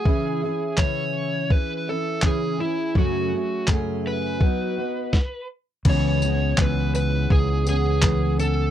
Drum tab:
CC |--------|--------|x-------|
TB |--------|--------|-x-x-x-x|
CP |--x---x-|--x-----|--x---x-|
SD |--------|------o-|--------|
BD |o-o-o-o-|o-o-o-o-|o-o-o-o-|